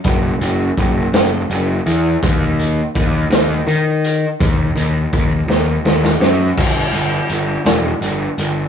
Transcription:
0.04 0.33 F#1 medium
0.04 kick loud
0.04 closed hi-hat medium
0.40 0.69 F#1 medium
0.40 closed hi-hat medium
0.77 1.06 F#1 medium
0.77 kick medium
0.77 closed hi-hat medium
1.13 1.42 F#1 medium
1.13 snare loud
1.13 closed hi-hat medium
1.50 1.79 F#1 medium
1.50 closed hi-hat medium
1.86 2.15 E2 medium
1.86 closed hi-hat medium
2.23 2.80 D#2 medium
2.23 kick loud
2.23 closed hi-hat medium
2.60 closed hi-hat medium
2.95 3.24 D#2 medium
2.95 kick medium
2.95 closed hi-hat medium
3.30 3.59 D#2 medium
3.30 snare loud
3.30 closed hi-hat medium
3.67 4.25 D#3 medium
3.67 closed hi-hat medium
4.04 closed hi-hat medium
4.40 4.69 D#2 medium
4.40 kick loud
4.40 closed hi-hat medium
4.75 5.04 D#2 medium
4.75 closed hi-hat medium
5.13 5.41 D#2 medium
5.13 kick medium
5.13 closed hi-hat medium
5.48 5.77 D#2 loud
5.48 snare medium
5.85 6.14 D#2 medium
5.85 snare medium
6.04 snare medium
6.20 6.49 F#2 medium
6.20 snare medium
6.57 6.84 G1 medium
6.57 kick loud
6.57 crash loud
6.93 7.19 G1 medium
6.93 closed hi-hat medium
7.30 7.56 G1 medium
7.30 closed hi-hat medium
7.65 7.91 E1 medium
7.65 snare loud
7.65 closed hi-hat medium
8.01 8.27 G1 medium
8.01 closed hi-hat medium
8.38 8.64 G1 medium
8.38 closed hi-hat medium

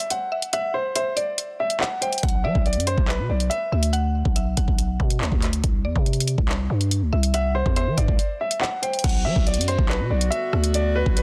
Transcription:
0.10 0.51 F#5 medium
0.10 closed hi-hat medium
0.32 0.52 E5 medium
0.42 closed hi-hat medium
0.53 0.73 E5 medium
0.53 0.93 F#5 loud
0.53 closed hi-hat medium
0.74 0.94 C5 medium
0.96 1.16 C5 medium
0.96 1.16 E5 medium
0.96 closed hi-hat medium
1.16 1.57 D5 medium
1.16 1.98 D5 medium
1.16 closed hi-hat medium
1.38 closed hi-hat medium
1.60 1.80 E5 medium
1.70 closed hi-hat medium
1.81 2.01 F#5 medium
1.81 clap loud
2.01 2.22 C5 medium
2.01 2.22 G5 medium
2.01 closed hi-hat medium
2.13 closed hi-hat soft
2.18 closed hi-hat medium
2.23 2.46 B1 loud
2.23 2.43 F#5 medium
2.23 kick loud
2.23 closed hi-hat medium
2.29 closed hi-hat medium
2.44 2.55 F#3 loud
2.44 2.65 D5 medium
2.44 2.64 E5 medium
2.55 2.78 B1 loud
2.55 kick medium
2.66 2.86 D5 medium
2.66 closed hi-hat soft
2.73 2.97 F#2 loud
2.73 closed hi-hat medium
2.80 closed hi-hat medium
2.87 3.07 C5 medium
2.87 closed hi-hat medium
2.98 3.20 B1 loud
2.98 kick medium
3.08 3.28 B4 medium
3.08 clap loud
3.19 3.29 B2 loud
3.30 3.50 B1 loud
3.30 3.50 D5 medium
3.40 closed hi-hat medium
3.50 3.90 E5 medium
3.50 closed hi-hat medium
3.72 4.23 D2 loud
3.72 3.93 E5 medium
3.83 closed hi-hat medium
3.93 4.33 F#5 loud
3.93 closed hi-hat medium
4.25 4.56 B1 loud
4.25 kick medium
4.36 4.56 E5 medium
4.36 closed hi-hat medium
4.57 4.67 B1 loud
4.57 5.60 F#5 medium
4.57 kick medium
4.57 closed hi-hat medium
4.68 4.98 B1 loud
4.68 kick loud
4.78 closed hi-hat medium
5.00 5.23 B2 loud
5.00 kick loud
5.10 closed hi-hat medium
5.21 5.31 D2 loud
5.21 clap loud
5.32 5.62 D2 loud
5.32 kick medium
5.42 clap medium
5.42 closed hi-hat medium
5.53 closed hi-hat medium
5.64 5.86 C2 loud
5.64 kick loud
5.64 closed hi-hat medium
5.85 5.95 E2 loud
5.85 6.05 D5 medium
5.96 6.36 C3 loud
5.96 kick medium
6.06 closed hi-hat soft
6.13 closed hi-hat medium
6.20 closed hi-hat medium
6.28 closed hi-hat medium
6.38 6.69 C2 loud
6.38 kick medium
6.49 clap loud
6.70 7.03 G2 loud
6.81 closed hi-hat medium
6.91 closed hi-hat medium
7.02 7.12 D2 loud
7.13 7.64 C2 loud
7.13 7.33 E5 medium
7.23 closed hi-hat medium
7.34 7.54 E5 medium
7.34 7.74 F#5 loud
7.34 closed hi-hat medium
7.55 7.75 C5 medium
7.66 7.88 E2 loud
7.66 kick medium
7.76 7.96 C5 medium
7.76 7.97 E5 medium
7.76 closed hi-hat medium
7.87 7.97 E3 loud
7.97 8.08 G2 loud
7.97 8.37 D5 medium
7.97 8.79 D5 medium
7.97 kick medium
7.97 closed hi-hat medium
8.08 8.18 C2 loud
8.08 kick loud
8.19 closed hi-hat medium
8.41 8.61 E5 medium
8.51 closed hi-hat medium
8.61 8.81 F#5 medium
8.61 clap loud
8.82 9.03 C5 medium
8.82 9.02 G5 medium
8.82 closed hi-hat medium
8.93 closed hi-hat soft
8.99 closed hi-hat medium
9.04 9.27 B1 loud
9.04 11.22 D3 medium
9.04 11.22 B3 medium
9.04 11.22 F#4 medium
9.04 9.24 F#5 loud
9.04 kick loud
9.04 closed hi-hat medium
9.04 crash loud
9.09 closed hi-hat medium
9.25 9.35 F#3 loud
9.25 9.45 E5 medium
9.36 9.59 B1 loud
9.36 kick medium
9.46 9.66 D5 medium
9.46 closed hi-hat soft
9.54 9.78 F#2 loud
9.54 closed hi-hat medium
9.61 closed hi-hat medium
9.68 9.88 C5 medium
9.68 closed hi-hat medium
9.79 10.01 B1 loud
9.79 kick loud
9.89 10.09 B4 medium
9.89 clap loud
10.00 10.10 B2 loud
10.10 10.31 B1 loud
10.10 10.30 D5 medium
10.21 closed hi-hat medium
10.31 10.71 E5 loud
10.31 closed hi-hat medium
10.53 11.04 D2 loud
10.53 cross-stick medium
10.64 closed hi-hat medium
10.74 10.94 D5 loud
10.74 closed hi-hat medium
10.96 11.15 B4 medium
11.06 11.22 B1 loud
11.06 kick medium
11.16 11.22 B4 medium
11.16 closed hi-hat medium

